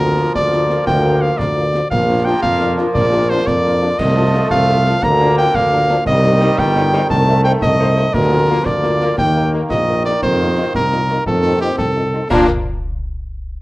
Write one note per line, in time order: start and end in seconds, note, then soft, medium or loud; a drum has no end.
0.00 0.26 D2 loud
0.00 1.75 F3 loud
0.00 0.07 F3 medium
0.00 1.75 A#3 loud
0.00 0.07 A#3 medium
0.00 0.07 F4 medium
0.00 0.31 A#4 loud
0.18 0.24 F3 medium
0.18 0.24 A#3 medium
0.18 0.24 F4 medium
0.35 0.78 D2 loud
0.35 0.83 D5 loud
0.35 concert bass drum medium
0.35 snare medium
0.52 0.58 F3 medium
0.52 0.58 A#3 medium
0.52 0.58 F4 medium
0.52 snare medium
0.70 0.76 F3 medium
0.70 0.77 A#3 medium
0.70 0.76 F4 medium
0.70 snare medium
0.87 1.30 D2 loud
0.87 1.23 G5 loud
0.87 concert bass drum medium
0.87 snare medium
1.05 1.11 F3 medium
1.05 1.11 A#3 medium
1.05 1.11 F4 medium
1.21 1.28 F3 medium
1.21 1.28 A#3 medium
1.21 1.29 F4 medium
1.21 1.39 F5 loud
1.38 1.82 D2 loud
1.38 1.90 D5 loud
1.38 concert bass drum medium
1.38 snare medium
1.56 1.63 F3 medium
1.56 1.62 A#3 medium
1.56 1.63 F4 medium
1.73 1.79 F3 medium
1.73 1.80 A#3 medium
1.73 1.79 F4 medium
1.73 snare medium
1.90 2.34 A#1 loud
1.90 3.95 F3 loud
1.90 3.95 A#3 loud
1.90 2.26 F5 loud
1.90 concert bass drum loud
1.90 snare medium
1.90 crash soft
2.08 2.14 F3 medium
2.08 2.14 D4 medium
2.08 2.15 F4 medium
2.25 2.32 F3 medium
2.25 2.32 D4 medium
2.25 2.32 F4 medium
2.25 2.42 G5 loud
2.42 2.82 F2 loud
2.42 2.74 F5 loud
2.42 concert bass drum medium
2.42 snare medium
2.61 2.67 F3 medium
2.61 2.67 D4 medium
2.61 2.67 F4 medium
2.61 snare medium
2.78 2.84 F3 medium
2.78 2.84 D4 medium
2.78 2.84 F4 loud
2.78 snare medium
2.95 3.38 A#1 loud
2.95 3.31 D5 loud
2.95 concert bass drum loud
2.95 snare medium
3.12 3.18 F3 medium
3.12 3.19 D4 medium
3.12 3.19 F4 medium
3.29 3.37 F3 medium
3.29 3.36 D4 loud
3.29 3.36 F4 loud
3.29 3.48 C5 loud
3.47 3.90 F2 loud
3.47 4.00 D5 loud
3.47 concert bass drum medium
3.47 snare medium
3.65 3.71 F3 medium
3.65 3.71 D4 medium
3.65 3.71 F4 medium
3.82 3.88 F3 medium
3.82 3.88 D4 loud
3.82 3.88 F4 medium
3.99 4.42 C2 loud
3.99 4.99 F3 loud
3.99 5.03 A3 loud
3.99 4.50 D#5 loud
3.99 concert bass drum medium
3.99 snare medium
3.99 crash medium
4.17 4.23 F3 medium
4.17 4.23 F4 medium
4.17 4.23 A4 medium
4.34 4.41 F3 loud
4.34 4.40 F4 medium
4.34 4.41 A4 loud
4.51 4.94 C2 loud
4.51 5.05 F5 loud
4.51 concert bass drum medium
4.51 snare medium
4.69 4.75 F3 medium
4.69 4.75 F4 loud
4.69 4.75 A4 medium
4.69 snare medium
4.85 4.92 F3 loud
4.85 4.92 F4 medium
4.85 4.91 A4 loud
4.85 snare medium
5.01 5.46 D2 loud
5.01 6.06 D3 loud
5.01 6.02 A#3 loud
5.01 5.37 A#5 loud
5.01 concert bass drum loud
5.01 snare medium
5.20 5.26 F3 medium
5.20 5.26 D4 medium
5.20 5.26 A#4 medium
5.38 5.44 F3 loud
5.38 5.44 D4 loud
5.38 5.44 A#4 loud
5.38 5.57 G5 loud
5.54 5.98 D2 loud
5.54 6.06 F5 loud
5.54 concert bass drum medium
5.54 snare medium
5.72 5.78 F3 medium
5.72 5.78 D4 loud
5.72 5.79 A#4 medium
5.89 5.95 F3 loud
5.89 5.95 D4 loud
5.89 5.95 A#4 loud
5.89 snare medium
6.05 6.49 C2 loud
6.05 8.10 D#3 loud
6.05 7.10 G3 loud
6.05 6.60 D#5 loud
6.05 concert bass drum loud
6.05 snare medium
6.05 crash soft
6.23 6.29 G3 medium
6.23 6.29 D#4 medium
6.23 6.29 C5 medium
6.40 6.46 G3 loud
6.40 6.47 D#4 loud
6.40 6.47 C5 loud
6.58 7.01 G1 loud
6.58 7.09 G5 loud
6.58 concert bass drum medium
6.58 snare medium
6.75 6.81 G3 medium
6.75 6.81 D#4 loud
6.75 6.81 C5 medium
6.75 snare medium
6.93 6.99 G3 loud
6.93 6.99 D#4 loud
6.93 6.99 C5 loud
6.93 snare medium
7.09 7.54 C2 loud
7.09 8.10 A3 loud
7.09 7.42 A5 loud
7.09 concert bass drum loud
7.09 snare medium
7.28 7.34 A3 medium
7.28 7.34 D#4 medium
7.28 7.34 C5 medium
7.44 7.51 A3 medium
7.44 7.51 D#4 loud
7.44 7.51 C5 loud
7.44 7.52 G5 loud
7.61 8.05 C2 loud
7.61 8.15 D#5 loud
7.61 concert bass drum loud
7.61 snare medium
7.79 7.86 A3 medium
7.79 7.86 D#4 loud
7.79 7.86 C5 loud
7.96 8.03 A3 medium
7.96 8.03 D#4 loud
7.96 8.03 C5 medium
7.96 snare medium
8.12 8.58 D2 loud
8.12 9.13 F3 loud
8.12 10.05 A#3 loud
8.12 8.67 A#4 loud
8.12 concert bass drum loud
8.12 snare medium
8.12 crash soft
8.31 8.38 A#3 medium
8.31 8.38 F4 medium
8.31 8.38 A#4 medium
8.49 8.56 A#3 medium
8.49 8.56 F4 loud
8.49 8.56 A#4 loud
8.65 9.10 D2 loud
8.65 9.18 D5 loud
8.65 concert bass drum medium
8.65 snare medium
8.83 8.90 A#3 medium
8.83 8.90 F4 medium
8.83 8.89 A#4 medium
8.83 snare medium
9.01 9.08 A#3 loud
9.01 9.08 F4 medium
9.01 9.08 A#4 loud
9.01 snare medium
9.17 9.62 D#2 loud
9.17 11.25 D#3 loud
9.17 9.50 G5 loud
9.17 concert bass drum medium
9.17 snare medium
9.36 9.42 A#3 medium
9.36 9.42 D#4 medium
9.36 9.43 A#4 medium
9.53 9.60 A#3 loud
9.53 9.60 D#4 medium
9.53 9.60 A#4 loud
9.70 10.14 A#1 loud
9.70 10.03 D#5 loud
9.70 concert bass drum medium
9.70 snare loud
9.88 9.94 A#3 medium
9.88 9.94 D#4 medium
9.88 9.94 A#4 medium
10.05 10.12 A#3 medium
10.05 10.12 D#4 medium
10.05 10.12 A#4 medium
10.05 10.21 D5 loud
10.05 snare medium
10.22 10.61 F2 loud
10.22 11.22 A#3 loud
10.22 10.71 C5 loud
10.22 concert bass drum loud
10.22 snare medium
10.22 crash soft
10.39 10.46 A#3 medium
10.39 10.46 D#4 medium
10.39 10.46 F4 medium
10.57 10.64 A#3 medium
10.57 10.64 D#4 loud
10.57 10.64 F4 medium
10.74 11.18 C2 medium
10.74 11.23 A#4 loud
10.74 concert bass drum medium
10.74 snare medium
10.92 10.98 A#3 medium
10.92 10.98 D#4 medium
10.92 10.98 F4 medium
10.92 snare medium
11.09 11.16 A#3 medium
11.09 11.16 D#4 medium
11.09 11.16 F4 medium
11.09 snare medium
11.26 11.70 F2 loud
11.26 12.09 D#3 loud
11.26 12.13 C4 loud
11.26 11.59 A4 loud
11.26 concert bass drum loud
11.26 snare medium
11.44 11.51 C4 medium
11.44 11.51 D#4 medium
11.44 11.50 F4 medium
11.61 11.68 C4 medium
11.61 11.68 D#4 medium
11.61 11.68 F4 medium
11.61 11.77 G4 loud
11.78 12.22 C2 medium
11.78 12.27 A4 loud
11.78 concert bass drum medium
11.78 snare medium
11.96 12.02 C4 medium
11.96 12.02 D#4 medium
11.96 12.02 F4 medium
12.14 12.20 C4 medium
12.14 12.20 D#4 medium
12.14 12.20 F4 medium
12.29 12.45 A#2 loud
12.29 12.44 F3 loud
12.29 12.45 A#3 loud
12.29 12.45 D4 loud
12.29 12.45 F4 loud
12.29 12.45 A#4 loud
12.29 concert bass drum loud
12.29 snare loud
12.29 crash medium